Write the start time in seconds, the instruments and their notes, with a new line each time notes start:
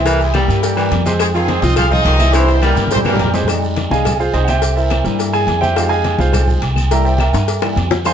Already playing: upright bass C2
0.06 grand piano E3 E4 E5, baritone saxophone E3, horn section A#3 E4 G4 A#4, cowbell, maracas
0.20 horn section G#3 G#4, high conga, low agogo, maracas
0.34 baritone saxophone G3, horn section G3 A#3 E4 G4, grand piano G3 G4 A#4, cowbell, high conga, low agogo, short guiro, claves, maracas
0.48 upright bass G2, high conga, short guiro, maracas
0.63 grand piano G3 G4 A#4, cowbell, high conga, low agogo, long guiro, maracas
0.76 baritone saxophone E3, grand piano G3 G4 A#4, high conga, low agogo, claves, maracas
0.91 upright bass F2, cowbell, high conga, low agogo, short guiro, maracas
1.06 baritone saxophone C3, grand piano G#3 G#4 C5, high conga, short guiro, maracas
1.19 horn section G#3 C4 D#4 G#4, cowbell, high conga, low agogo, long guiro, claves, maracas
1.34 baritone saxophone D#3, grand piano F3 F4 F5, horn section G#3 C4 D#4 G#4, high conga, maracas
1.48 grand piano G#3 G#4 C5, cowbell, high conga, low agogo, short guiro, maracas
1.62 upright bass C2, grand piano F3 F4 F5, horn section D#4 D#5, high conga, short guiro, maracas
1.76 baritone saxophone F3, horn section F4 G#4 C5 F5, cowbell, high conga, low conga, low agogo, long guiro, claves, maracas
1.91 grand piano F3 F4 F5, horn section D#4 G#4 C5 D#5, high conga, low conga, maracas
2.05 upright bass C2, baritone saxophone D#3, cowbell, high conga, low timbale, low agogo, short guiro, maracas
2.19 grand piano E3 E4 E5, high conga, low agogo, short guiro, claves, maracas
2.33 grand piano E3 E4 E5, baritone saxophone E3, horn section C4 E4 G4 C5, cowbell, high timbale, long guiro, maracas
2.48 high conga, high timbale, low agogo, maracas
2.62 baritone saxophone G3, grand piano G3 G4 A#4, horn section A#3 E4 G4 A#4, cowbell, high conga, high timbale, low agogo, short guiro, claves, maracas
2.76 upright bass G2, high conga, high timbale, short guiro, maracas
2.87 high conga, maracas
2.91 grand piano G3 G4 A#4, horn section C4 E4 G4 C5, cowbell, low agogo
2.96 low conga
3.05 baritone saxophone E3, grand piano G3 G4 A#4, horn section A#3 E4 G4 A#4, high conga, low timbale, low agogo, claves, maracas
3.15 upright bass F2, cowbell, low conga, short guiro
3.20 low timbale, low agogo, maracas
3.25 low conga
3.34 baritone saxophone C3, grand piano G#3 G#4 C5, low conga, low timbale, short guiro, maracas
3.44 grand piano G3, low conga
3.48 grand piano G#3 D#4, cowbell, high conga, low agogo, long guiro, claves, maracas
3.63 high conga, maracas
3.76 cowbell, high conga, low agogo, short guiro, maracas
3.90 upright bass C2, grand piano G3 G#3 D#4 G#4 D#5 F5 G#5, high conga, short guiro, maracas
4.05 cowbell, high conga, low conga, low agogo, long guiro, claves, maracas
4.20 grand piano F4 G#4 C5 F5, high conga, maracas
4.33 upright bass C2, grand piano D#4 G#4 C5 D#5, cowbell, high conga, low agogo, short guiro, maracas
4.44 grand piano F#5, low agogo, short guiro, claves, maracas
4.48 grand piano G4 C5 E5 G5, high conga
4.62 cowbell, high conga, long guiro, maracas
4.76 grand piano E4 A#4 C5 E5, high conga, low agogo, maracas
4.90 cowbell, high conga, low agogo, short guiro, claves, maracas
5.04 upright bass G2, grand piano G3 A#3 E4, short guiro, maracas
5.19 cowbell, high conga, low agogo, long guiro, maracas
5.33 grand piano G#4 G#5, high conga, low agogo, claves, maracas
5.47 upright bass F2, cowbell, high conga, low agogo, short guiro, maracas
5.61 grand piano G4 C5 E5 G5, high conga, short guiro, maracas
5.75 grand piano G#3 D#4 F4 G4 G#4 C5 F5, cowbell, high conga, low agogo, long guiro, claves, maracas
5.89 grand piano G#4 D#5 F5 G#5, high conga, maracas
6.04 cowbell, high conga, low agogo, short guiro, maracas
6.19 upright bass C2, grand piano F4 G#4 C5 F5, high conga, short guiro, maracas
6.33 cowbell, high conga, low conga, low agogo, long guiro, claves, maracas
6.48 high conga, low conga, maracas
6.62 upright bass C2, cowbell, high conga, low agogo, short guiro, maracas
6.76 high conga, low agogo, short guiro, claves, maracas
6.91 grand piano G3 A#3 E4 A#4 E5 G5 A#5, cowbell, long guiro, maracas
7.05 grand piano G4 C5 E5 G5, high conga, low agogo, maracas
7.18 grand piano A#4 E5 G5 A#5, cowbell, high conga, low agogo, short guiro, claves, maracas
7.33 upright bass G2, high bongo, high conga, short guiro, maracas
7.48 cowbell, high conga, low agogo, long guiro, maracas
7.62 grand piano G3 A#3 E4, high bongo, high conga, low agogo, claves, maracas
7.76 upright bass F2, cowbell, high conga, low timbale, low agogo, short guiro, maracas
7.91 low bongo, high conga, short guiro, maracas
8.05 grand piano G3 G#3 D#4 C5 F5 G#5 C6, cowbell, high conga, low agogo, long guiro, claves, maracas